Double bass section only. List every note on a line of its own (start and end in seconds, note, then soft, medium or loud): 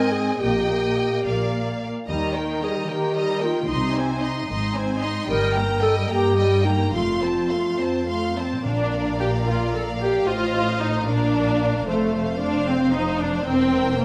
0.41 0.93 A#1 soft
1.25 1.77 A#1 soft
2.08 2.59 D#2 soft
3.70 4.19 C2 soft
4.50 4.99 G#1 soft
5.29 5.78 G1 medium
6.94 7.47 F1 soft
8.65 10.24 A#1 soft
10.28 11.07 A1 soft
11.09 11.88 A#1 soft
11.88 13.43 F1 soft
13.47 14.05 E1 soft